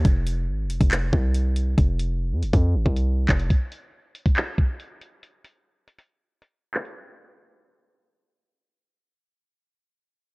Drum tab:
HH |x-x---xx----x-x-|x-x---xx---x---x|x-x---xx----x-x-|x-x---xx---x---x|
CP |--------x-------|--------------x-|--------x-------|--------------x-|
BD |o------o--o-----|o------o--o---o-|o------o--o-----|----------------|

HH |----------------|----------------|
CP |----------------|----------------|
BD |----------------|----------------|